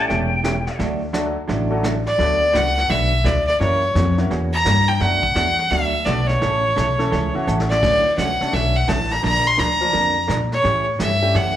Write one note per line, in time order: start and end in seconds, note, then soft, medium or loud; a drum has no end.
0.00 0.27 G3 medium
0.00 0.27 A3 medium
0.00 0.27 C#4 medium
0.00 0.27 E4 medium
0.00 0.27 G4 medium
0.08 0.66 E1 medium
0.08 0.31 C#3 medium
0.08 0.31 E3 medium
0.08 0.31 A3 medium
0.08 0.31 C#4 medium
0.08 0.31 G4 medium
0.08 0.77 G5 loud
0.08 brush sweep medium
0.08 snare medium
0.44 0.56 C#3 medium
0.44 0.56 E3 medium
0.44 0.56 A3 medium
0.44 0.56 C#4 medium
0.44 0.56 G4 medium
0.44 snare medium
0.44 hi-hat pedal medium
0.67 snare soft
0.79 1.35 D2 medium
0.79 1.01 D3 medium
0.79 1.01 F#3 medium
0.79 1.01 A3 medium
0.79 1.01 D4 medium
0.79 1.01 F#4 medium
0.79 brush sweep soft
0.79 snare soft
1.13 1.25 D3 medium
1.13 1.34 F#3 medium
1.13 1.25 F#3 medium
1.13 1.34 A3 medium
1.13 1.26 A3 medium
1.13 1.34 D4 medium
1.13 1.26 D4 medium
1.13 1.34 F#4 medium
1.13 1.26 F#4 medium
1.13 1.34 A4 medium
1.13 snare medium
1.13 hi-hat pedal medium
1.48 2.05 A1 medium
1.48 1.70 D3 medium
1.48 1.71 F#3 medium
1.48 1.71 A3 medium
1.48 1.71 D4 medium
1.48 1.71 F#4 medium
1.48 brush sweep medium
1.48 snare medium
1.71 1.83 F#3 medium
1.71 1.83 A3 medium
1.71 1.83 D4 medium
1.71 1.83 F#4 medium
1.71 1.83 A4 medium
1.83 1.95 D3 medium
1.83 1.95 F#3 medium
1.83 1.96 A3 medium
1.83 1.96 D4 medium
1.83 1.96 F#4 medium
1.83 snare medium
1.83 hi-hat pedal medium
2.07 2.57 D5 loud
2.07 snare soft
2.18 2.53 D2 medium
2.18 2.41 D3 medium
2.18 2.41 F#3 medium
2.18 2.41 A3 medium
2.18 3.17 A3 medium
2.18 3.17 B3 medium
2.18 2.41 D4 medium
2.18 3.17 D4 medium
2.18 2.41 F#4 medium
2.18 3.18 F#4 medium
2.18 3.18 A4 medium
2.18 2.41 B4 medium
2.18 brush sweep soft
2.18 snare soft
2.53 2.89 C#2 medium
2.53 2.65 D3 medium
2.53 2.65 F#3 medium
2.53 2.66 A3 medium
2.53 2.66 D4 medium
2.53 2.66 F#4 medium
2.53 2.66 B4 medium
2.53 2.92 F#5 loud
2.53 snare medium
2.53 hi-hat pedal medium
2.78 snare soft
2.89 3.24 B1 medium
2.89 3.11 D3 medium
2.89 3.11 F#3 medium
2.89 3.12 A3 medium
2.89 3.12 D4 medium
2.89 3.12 F#4 medium
2.89 3.12 B4 medium
2.89 3.27 E5 loud
2.89 brush sweep medium
2.89 snare soft
3.24 3.59 D2 medium
3.24 3.36 D3 medium
3.24 3.36 F#3 medium
3.24 3.36 A3 medium
3.24 3.36 D4 medium
3.24 3.37 F#4 medium
3.24 3.36 B4 medium
3.24 3.46 D5 medium
3.24 snare medium
3.24 hi-hat pedal medium
3.47 3.59 D5 medium
3.47 snare soft
3.60 3.94 F#2 medium
3.60 3.82 C#3 medium
3.60 3.82 E3 medium
3.60 3.81 A#3 medium
3.60 3.82 A#3 medium
3.60 3.82 C#4 medium
3.60 3.81 C#4 medium
3.60 3.81 E4 medium
3.60 3.81 F#4 medium
3.60 3.83 F#4 medium
3.60 3.81 A#4 medium
3.60 4.14 C#5 medium
3.60 brush sweep soft
3.60 snare soft
3.95 4.29 F2 medium
3.95 4.07 C#3 medium
3.95 4.07 E3 medium
3.95 4.07 A#3 medium
3.95 4.07 C#4 medium
3.95 4.07 F#4 medium
3.95 snare medium
3.95 hi-hat pedal medium
4.18 4.29 A#3 medium
4.18 4.29 C#4 medium
4.18 4.29 E4 medium
4.18 4.30 F#4 medium
4.18 4.30 C#5 medium
4.18 snare soft
4.30 4.65 E2 medium
4.30 4.52 C#3 medium
4.30 4.52 E3 medium
4.30 4.53 A#3 medium
4.30 4.53 C#4 medium
4.30 4.53 F#4 medium
4.30 brush sweep medium
4.30 snare soft
4.53 4.89 A#5 loud
4.65 5.00 G2 medium
4.65 4.77 C#3 medium
4.65 4.77 E3 medium
4.65 4.77 A#3 medium
4.65 4.77 C#4 medium
4.65 4.78 F#4 medium
4.65 snare medium
4.65 hi-hat pedal medium
4.88 5.02 G5 medium
4.88 snare soft
5.00 5.35 F#2 medium
5.00 5.22 B2 medium
5.00 5.22 F#3 medium
5.00 5.23 A3 medium
5.00 5.23 D4 medium
5.00 5.23 F#4 medium
5.00 5.71 F#5 loud
5.00 brush sweep medium
5.00 snare soft
5.23 kick medium
5.35 5.70 E2 medium
5.35 5.47 B2 medium
5.35 5.47 F#3 medium
5.35 5.47 A3 medium
5.35 5.48 D4 medium
5.35 5.47 F#4 medium
5.35 snare medium
5.35 hi-hat pedal medium
5.58 snare soft
5.70 6.05 D2 medium
5.70 5.93 B2 medium
5.70 5.93 F#3 medium
5.70 5.93 A3 medium
5.70 5.93 D4 medium
5.70 5.93 F#4 medium
5.70 6.07 E5 medium
5.70 brush sweep soft
5.70 snare soft
6.05 6.40 B1 medium
6.05 6.18 B2 medium
6.05 6.18 F#3 medium
6.05 6.41 A3 medium
6.05 6.18 A3 medium
6.05 6.41 B3 medium
6.05 6.41 D4 medium
6.05 6.18 D4 medium
6.05 6.41 F#4 medium
6.05 6.18 F#4 medium
6.05 6.41 A4 medium
6.05 6.28 D5 medium
6.05 snare medium
6.05 hi-hat pedal medium
6.27 7.46 C#5 medium
6.27 snare soft
6.42 6.76 A1 medium
6.42 6.64 C#3 medium
6.42 6.64 E3 medium
6.42 6.64 A3 medium
6.42 6.64 C#4 medium
6.42 6.64 A4 medium
6.42 brush sweep medium
6.42 snare soft
6.76 7.11 B1 medium
6.76 6.88 C#3 medium
6.76 6.88 E3 medium
6.76 6.88 A3 medium
6.76 6.88 C#4 medium
6.76 6.88 A4 medium
6.76 snare medium
6.76 hi-hat pedal medium
6.99 7.10 E3 medium
6.99 7.10 A3 medium
6.99 7.11 C#4 medium
6.99 7.11 E4 medium
6.99 7.11 A4 medium
6.99 snare soft
7.11 7.33 C#2 medium
7.11 7.33 C#3 medium
7.11 7.34 E3 medium
7.11 7.34 A3 medium
7.11 7.34 C#4 medium
7.11 7.34 A4 medium
7.11 brush sweep soft
7.11 snare soft
7.35 7.80 E3 medium
7.35 7.80 A3 medium
7.35 7.80 C#4 medium
7.35 7.80 E4 medium
7.35 7.80 F#4 medium
7.35 muted upright bass stroke soft
7.47 7.81 A1 medium
7.47 7.59 C#3 medium
7.47 7.59 E3 medium
7.47 7.59 A3 medium
7.47 7.59 C#4 medium
7.47 7.59 A4 medium
7.47 hi-hat pedal medium
7.60 snare medium
7.69 8.14 D5 medium
7.69 snare medium
7.83 8.17 D2 medium
7.83 8.04 D3 medium
7.83 8.04 F#3 medium
7.83 8.05 A3 medium
7.83 8.05 C#4 medium
7.83 8.05 F#4 medium
7.83 brush sweep soft
7.83 kick medium
7.83 snare soft
7.83 crash medium
8.18 8.39 C#2 medium
8.18 8.29 D3 medium
8.18 8.29 F#3 medium
8.18 8.29 A3 medium
8.18 8.30 C#4 medium
8.18 8.30 F#4 medium
8.18 8.55 F#5 medium
8.18 snare medium
8.18 hi-hat pedal medium
8.41 8.52 A3 medium
8.41 8.52 C#4 medium
8.41 8.52 D4 medium
8.41 8.52 F#4 medium
8.41 8.52 A4 medium
8.41 muted upright bass stroke soft
8.41 snare soft
8.52 8.87 B1 medium
8.52 8.74 D3 medium
8.52 8.74 F#3 medium
8.52 8.75 A3 medium
8.52 8.75 C#4 medium
8.52 8.75 F#4 medium
8.52 8.77 E5 loud
8.52 brush sweep medium
8.52 snare soft
8.76 8.90 F#5 loud
8.88 9.22 A1 medium
8.88 8.99 D3 medium
8.88 9.00 F#3 medium
8.88 9.00 A3 medium
8.88 9.00 C#4 medium
8.88 9.00 F#4 medium
8.88 9.13 A5 loud
8.88 snare medium
8.88 hi-hat pedal medium
9.11 9.24 A#5 medium
9.11 snare soft
9.23 9.58 A#1 medium
9.23 9.45 D3 medium
9.23 9.45 F3 medium
9.23 9.45 A#3 medium
9.23 9.45 D4 medium
9.23 9.45 A#4 medium
9.23 9.48 A#5 loud
9.23 brush sweep medium
9.23 snare soft
9.47 9.61 C6 loud
9.57 9.93 D2 medium
9.57 9.69 D3 medium
9.57 9.70 F3 medium
9.57 9.70 A#3 medium
9.57 9.70 D4 medium
9.57 9.70 A#4 medium
9.57 10.29 A#5 loud
9.57 snare medium
9.57 hi-hat pedal medium
9.81 9.92 F3 medium
9.81 9.92 A#3 medium
9.81 9.93 D4 medium
9.81 9.93 F4 medium
9.81 9.93 A#4 medium
9.92 10.28 F2 medium
9.92 10.15 D3 medium
9.92 10.15 F3 medium
9.92 10.15 A#3 medium
9.92 10.15 D4 medium
9.92 10.15 A#4 medium
9.92 brush sweep soft
9.92 snare soft
10.28 10.63 A#2 medium
10.28 10.40 D3 medium
10.28 10.40 F3 medium
10.28 10.40 A#3 medium
10.28 10.40 D4 medium
10.28 10.40 A#4 medium
10.28 snare medium
10.28 hi-hat pedal medium
10.52 10.85 C#5 loud
10.52 snare soft
10.63 10.99 A2 medium
10.63 10.86 C#3 medium
10.63 10.86 E3 medium
10.63 10.86 A3 medium
10.63 10.86 C#4 medium
10.63 10.86 G4 medium
10.63 brush sweep soft
10.63 snare soft
10.99 11.34 G2 medium
10.99 11.11 C#3 medium
10.99 11.11 E3 medium
10.99 11.11 A3 medium
10.99 11.11 C#4 medium
10.99 11.11 G4 medium
10.99 11.37 E5 medium
10.99 snare medium
10.99 hi-hat pedal medium
11.22 11.33 G3 medium
11.22 11.33 A3 medium
11.22 11.34 C#4 medium
11.22 11.34 E4 medium
11.22 11.34 G4 medium
11.34 11.56 F#2 medium
11.34 11.56 C#3 medium
11.34 11.56 E3 medium
11.34 11.56 A3 medium
11.34 11.56 C#4 medium
11.34 11.56 G4 medium
11.34 11.56 F#5 medium
11.34 brush sweep medium
11.34 snare soft